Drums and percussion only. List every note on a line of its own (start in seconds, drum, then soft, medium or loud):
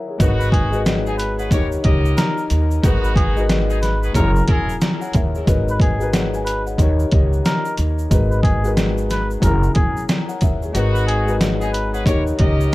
0.20 kick loud
0.20 closed hi-hat loud
0.20 shaker medium
0.41 shaker medium
0.52 kick medium
0.52 closed hi-hat medium
0.73 shaker medium
0.86 snare loud
0.86 closed hi-hat loud
0.86 shaker medium
1.06 shaker soft
1.19 closed hi-hat medium
1.19 shaker soft
1.39 shaker soft
1.51 kick medium
1.51 closed hi-hat loud
1.51 shaker medium
1.72 shaker soft
1.84 kick loud
1.84 closed hi-hat medium
2.05 shaker medium
2.17 snare loud
2.17 closed hi-hat medium
2.17 shaker medium
2.38 shaker medium
2.50 closed hi-hat medium
2.50 shaker medium
2.71 shaker medium
2.84 kick loud
2.84 closed hi-hat loud
2.84 shaker medium
3.04 shaker medium
3.16 kick medium
3.16 closed hi-hat medium
3.37 shaker medium
3.49 snare loud
3.49 closed hi-hat loud
3.49 shaker medium
3.70 shaker soft
3.82 snare soft
3.82 closed hi-hat medium
3.82 shaker soft
4.03 shaker medium
4.14 kick medium
4.14 closed hi-hat loud
4.14 shaker medium
4.36 shaker soft
4.48 kick loud
4.48 closed hi-hat medium
4.69 shaker medium
4.81 snare loud
4.81 closed hi-hat medium
4.81 shaker medium
5.02 shaker medium
5.13 kick loud
5.13 closed hi-hat medium
5.13 shaker medium
5.35 shaker soft
5.47 kick loud
5.47 closed hi-hat loud
5.47 shaker medium
5.68 shaker medium
5.80 kick medium
5.80 closed hi-hat medium
6.01 shaker medium
6.13 snare loud
6.13 closed hi-hat loud
6.13 shaker medium
6.34 shaker soft
6.46 closed hi-hat medium
6.46 shaker medium
6.67 shaker medium
6.78 kick medium
6.78 closed hi-hat loud
6.78 shaker medium
7.00 shaker soft
7.11 kick loud
7.11 closed hi-hat medium
7.33 shaker medium
7.45 snare loud
7.45 closed hi-hat medium
7.45 shaker medium
7.65 shaker medium
7.77 closed hi-hat medium
7.77 shaker medium
7.99 shaker medium
8.11 kick loud
8.11 closed hi-hat loud
8.11 shaker medium
8.32 shaker medium
8.43 kick loud
8.43 closed hi-hat medium
8.64 shaker medium
8.77 snare loud
8.77 closed hi-hat loud
8.77 shaker medium
8.98 shaker soft
9.10 snare soft
9.10 closed hi-hat medium
9.10 shaker medium
9.31 shaker soft
9.42 kick medium
9.42 closed hi-hat loud
9.42 shaker medium
9.63 shaker medium
9.75 kick loud
9.75 closed hi-hat medium
9.97 shaker medium
10.09 snare loud
10.09 closed hi-hat medium
10.09 shaker medium
10.29 shaker medium
10.41 kick loud
10.41 closed hi-hat medium
10.41 shaker medium
10.62 shaker soft
10.75 closed hi-hat loud
10.75 shaker medium
10.95 shaker medium
11.08 closed hi-hat medium
11.28 shaker soft
11.41 snare loud
11.41 closed hi-hat loud
11.41 shaker medium
11.61 shaker soft
11.74 closed hi-hat medium
11.74 shaker soft
11.94 shaker soft
12.06 kick medium
12.06 closed hi-hat loud
12.06 shaker medium
12.27 shaker medium
12.39 kick loud
12.39 closed hi-hat medium
12.61 shaker medium